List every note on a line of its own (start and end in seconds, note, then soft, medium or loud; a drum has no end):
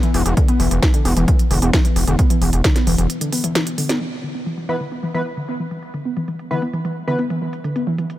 0.00 4.05 E3 medium
0.00 0.09 E3 loud
0.00 4.05 B3 medium
0.00 closed hi-hat medium
0.14 0.23 E1 medium
0.14 0.18 E3 medium
0.14 open hi-hat loud
0.26 0.35 E1 medium
0.26 closed hi-hat medium
0.37 0.43 D3 medium
0.37 kick loud
0.37 closed hi-hat medium
0.48 0.54 B3 medium
0.48 closed hi-hat medium
0.60 0.69 E1 medium
0.60 0.66 E3 loud
0.60 open hi-hat medium
0.71 0.80 E1 medium
0.71 0.75 E3 medium
0.71 closed hi-hat medium
0.83 kick loud
0.83 snare loud
0.83 closed hi-hat medium
0.94 1.00 D3 medium
0.94 closed hi-hat medium
1.05 1.14 E1 loud
1.05 1.11 B3 medium
1.05 open hi-hat loud
1.17 1.25 E1 medium
1.17 1.23 E3 loud
1.17 closed hi-hat medium
1.28 1.32 E3 medium
1.28 kick loud
1.28 closed hi-hat medium
1.39 closed hi-hat medium
1.51 1.60 E1 medium
1.51 1.57 D3 medium
1.51 open hi-hat loud
1.62 1.71 E1 medium
1.62 1.68 B3 medium
1.62 closed hi-hat medium
1.73 1.79 E3 loud
1.73 kick loud
1.73 snare loud
1.73 closed hi-hat medium
1.85 1.88 E3 medium
1.85 closed hi-hat medium
1.96 2.05 E1 medium
1.96 open hi-hat loud
2.08 2.16 E1 medium
2.08 2.13 D3 medium
2.08 closed hi-hat medium
2.19 2.25 B3 medium
2.19 kick loud
2.19 closed hi-hat medium
2.30 2.36 E3 loud
2.30 closed hi-hat medium
2.42 2.51 E1 medium
2.42 2.45 E3 medium
2.42 open hi-hat loud
2.53 2.62 E1 medium
2.53 closed hi-hat medium
2.64 2.70 D3 medium
2.64 kick loud
2.64 snare loud
2.64 closed hi-hat medium
2.76 2.82 B3 medium
2.76 snare soft
2.76 closed hi-hat medium
2.87 2.96 E1 loud
2.87 2.93 E3 loud
2.87 open hi-hat loud
2.98 3.07 E1 medium
2.98 3.02 E3 medium
2.98 closed hi-hat medium
3.10 closed hi-hat medium
3.21 3.27 D3 medium
3.21 closed hi-hat medium
3.33 3.38 B3 medium
3.33 open hi-hat loud
3.44 3.50 E3 loud
3.44 closed hi-hat medium
3.55 3.59 E3 medium
3.55 snare loud
3.55 closed hi-hat medium
3.67 closed hi-hat medium
3.78 3.84 D3 medium
3.78 open hi-hat loud
3.89 3.95 B3 medium
3.89 snare medium
3.89 closed hi-hat medium
4.01 4.04 E3 medium
4.01 closed hi-hat medium
4.12 closed hi-hat medium
4.24 4.29 D3 medium
4.35 4.41 B3 medium
4.35 closed hi-hat medium
4.46 4.52 E3 loud
4.46 closed hi-hat medium
4.58 4.61 E3 medium
4.58 closed hi-hat medium
4.69 4.76 E3 medium
4.69 4.76 B3 medium
4.69 4.76 B4 medium
4.80 4.86 D3 medium
4.80 closed hi-hat medium
4.92 4.98 B3 medium
4.92 closed hi-hat medium
5.03 5.09 E3 loud
5.03 closed hi-hat medium
5.14 5.18 E3 medium
5.14 5.21 E3 medium
5.14 5.21 B3 medium
5.14 5.21 B4 medium
5.26 closed hi-hat medium
5.37 5.43 D3 medium
5.37 closed hi-hat medium
5.48 5.54 B3 medium
5.48 closed hi-hat medium
5.60 5.66 E3 loud
5.71 5.75 E3 medium
5.71 closed hi-hat medium
5.83 closed hi-hat medium
5.94 6.00 D3 medium
5.94 closed hi-hat medium
6.05 6.11 B3 medium
6.17 6.23 E3 loud
6.17 closed hi-hat medium
6.28 6.32 E3 medium
6.28 closed hi-hat medium
6.39 closed hi-hat medium
6.51 6.57 D3 medium
6.51 6.62 E3 medium
6.51 6.62 B3 medium
6.51 6.62 B4 medium
6.62 6.68 B3 medium
6.62 closed hi-hat medium
6.73 6.79 E3 medium
6.73 closed hi-hat medium
6.85 6.88 E3 medium
6.85 closed hi-hat medium
7.08 7.13 D3 medium
7.08 7.19 E3 loud
7.08 7.19 B3 medium
7.08 7.19 B4 loud
7.08 closed hi-hat medium
7.19 7.25 B3 medium
7.19 closed hi-hat medium
7.30 7.36 E3 loud
7.30 closed hi-hat medium
7.42 7.45 E3 medium
7.53 closed hi-hat medium
7.64 7.70 D3 medium
7.64 closed hi-hat medium
7.76 7.82 B3 medium
7.76 closed hi-hat medium
7.87 7.93 E3 loud
7.98 8.02 E3 medium
7.98 closed hi-hat medium
8.10 closed hi-hat medium